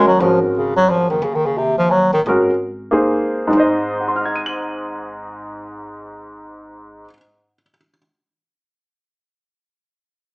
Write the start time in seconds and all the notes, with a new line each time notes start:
Already playing: D#2
0.07 F#3
0.20 G#1 F3 G#3 C#4 F#4 A#4
0.42 G#2
0.57 C#3
0.76 F#3
0.90 F3
1.10 F#1 D#3
1.22 D#2 C#3
1.35 D#3
1.46 C#3
1.58 C3
1.78 F3
1.91 F#3
2.13 A1 D#3
2.26 G#1 G#3 C#4 F#4 A#4
2.91 A#3 D#4 G#4 C5
3.47 G#2 G#3
3.53 G#1 D#4
3.57 C5 D#5
4.01 F#5
4.08 C6
4.16 F6
4.25 G#6
4.36 D#7
4.46 F#7